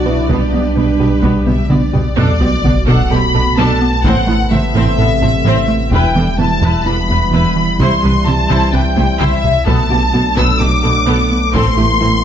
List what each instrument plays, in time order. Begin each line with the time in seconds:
Already playing: sub bass B1, trombone section F#3 D4, viola section F#4, violin section D5
0.06 double bass section B1, cello section B2, analog synth bass B2, viola section B3, french horn section E4, synth arpeggio sound B4
0.29 double bass section B1, cello section B2, analog synth bass B2, synth arpeggio sound G3, trombone section G3, viola section B3 G4, french horn section D4, violin section B4, taiko
0.52 double bass section B1, cello section B2, viola section B3, analog synth bass B3, synth arpeggio sound D4
0.76 double bass section B1, cello section B2, analog synth bass B2, synth arpeggio sound B3, viola section B3, violin section B4
0.99 double bass section B1, cello section B2, analog synth bass B2, viola section B3, synth arpeggio sound G4
1.23 double bass section B1, cello section B2, analog synth bass B2, synth arpeggio sound G3, viola section B3, taiko
1.46 double bass section B1, cello section B2, analog synth bass B2, viola section B3, synth arpeggio sound B3, violin section E5, taiko mid
1.70 double bass section B1, cello section B2, viola section B3, analog synth bass B3, synth arpeggio sound D4, violin section D5, taiko mid
1.93 double bass section B1, cello section B2, analog synth bass B2, viola section B3, synth arpeggio sound G4, taiko low
2.17 sub bass B1, double bass section B1, cello section B2, trombone section B2 A3, analog synth bass B2, synth arpeggio sound B3, french horn section B3 F#4, viola section D4 A4, violin section D5, taiko, sub drop
2.41 double bass section B1, cello section B2, analog synth bass B3, viola section C4 G4, synth arpeggio sound F#4
2.64 double bass section B1, cello section B2, analog synth bass B3, viola section D4 A4, synth arpeggio sound F#4, taiko mid
2.87 double bass section B1, cello section B2, analog synth bass B2, synth arpeggio sound B3, viola section D4 A4, violin section F#5
3.11 double bass section B1, cello section B2, analog synth bass B2, viola section C4 G4, synth arpeggio sound A4, violin section B5
3.35 double bass section B1, cello section B2, analog synth bass B2, viola section D4 A4, synth arpeggio sound A4
3.58 double bass section B1, cello section B2, analog synth bass B2, synth arpeggio sound B3, viola section D4 A4, violin section A5
3.82 analog synth bass B3
4.04 double bass section A1, sub bass A1, analog synth bass A2, cello section A2, trombone section C3, synth arpeggio sound A3, viola section C4 C5, french horn section E4, violin section F#5, taiko
4.27 double bass section A1, cello section A2, analog synth bass A3, viola section B3 A4, synth arpeggio sound E4
4.51 double bass section A1, cello section A2, analog synth bass A3, viola section C4 C5, synth arpeggio sound E4, violin section E5, taiko mid
4.74 double bass section A1, analog synth bass A2, cello section A2, synth arpeggio sound A3, viola section C4 C5
4.98 double bass section A1, analog synth bass A2, cello section A2, viola section B3 A4, synth arpeggio sound A4
5.22 double bass section A1, analog synth bass A2, cello section A2, viola section C4 C5, synth arpeggio sound A4
5.45 double bass section A1, analog synth bass A2, cello section A2, synth arpeggio sound A3, viola section C4 C5
5.68 analog synth bass A3
5.91 double bass section E1, sub bass E1, cello section E2, analog synth bass E2, synth arpeggio sound E3, trombone section E3 G3, french horn section B3, viola section E4 B4, violin section G5, taiko
6.15 double bass section E1, cello section E2, analog synth bass E3, synth arpeggio sound B3, viola section D4 A4
6.38 double bass section E1, cello section E2, analog synth bass E3, synth arpeggio sound B3, viola section E4 B4, violin section A5
6.62 double bass section E1, analog synth bass E2, cello section E2, synth arpeggio sound E3, viola section E4 B4
6.85 double bass section E1, analog synth bass E2, cello section E2, viola section D4 A4, synth arpeggio sound E4, violin section B5
7.09 double bass section E1, analog synth bass E2, cello section E2, synth arpeggio sound E4, viola section E4 B4
7.33 double bass section E1, analog synth bass E2, cello section E2, synth arpeggio sound E3, viola section E4 B4, violin section B5
7.56 analog synth bass E3
7.79 analog synth bass C2, double bass section C2, sub bass C2, synth arpeggio sound C3, cello section C3, french horn section C4 E4, viola section E4 C5, violin section C6, taiko
8.03 double bass section C2, analog synth bass C3, cello section C3, synth arpeggio sound G3, viola section D4 B4
8.26 double bass section C2, analog synth bass C3, cello section C3, synth arpeggio sound G3, viola section E4 C5, violin section A5
8.49 double bass section C2, analog synth bass C2, synth arpeggio sound C3, cello section C3, viola section E4 C5
8.73 double bass section C2, analog synth bass C2, cello section C3, synth arpeggio sound C4, viola section D4 B4, violin section G5
8.96 analog synth bass C2, double bass section C2, cello section C3, synth arpeggio sound C4, viola section E4 C5, taiko high
9.20 analog synth bass C2, double bass section C2, synth arpeggio sound C3, cello section C3, viola section E4 C5, violin section E5, taiko mid
9.44 analog synth bass C3, taiko low
9.66 sub bass B1, double bass section B1, cello section B2, analog synth bass B2, trombone section F#3 A3, viola section B3 A4, synth arpeggio sound B3, french horn section B3 D4, violin section A5, taiko
9.90 double bass section B1, cello section B2, viola section A3 G4, analog synth bass B3, synth arpeggio sound F#4
10.13 double bass section B1, cello section B2, viola section B3 A4, analog synth bass B3, synth arpeggio sound F#4
10.36 double bass section B1, cello section B2, analog synth bass B2, synth arpeggio sound B3, viola section B3 A4, violin section E6
10.59 double bass section B1, cello section B2, analog synth bass B2, viola section A3 G4, synth arpeggio sound A4, violin section D6
10.83 double bass section B1, cello section B2, analog synth bass B2, viola section B3 A4, synth arpeggio sound A4
11.07 double bass section B1, cello section B2, analog synth bass B2, viola section B3 A4, synth arpeggio sound B3
11.32 analog synth bass B3
11.54 double bass section A1, sub bass A1, cello section A2, analog synth bass A2, trombone section E3, synth arpeggio sound A3, viola section C4 A4, french horn section E4, violin section C6, taiko
11.77 double bass section A1, cello section A2, viola section A3 G4, analog synth bass A3, synth arpeggio sound E4
12.01 double bass section A1, cello section A2, analog synth bass A3, viola section C4 A4, synth arpeggio sound E4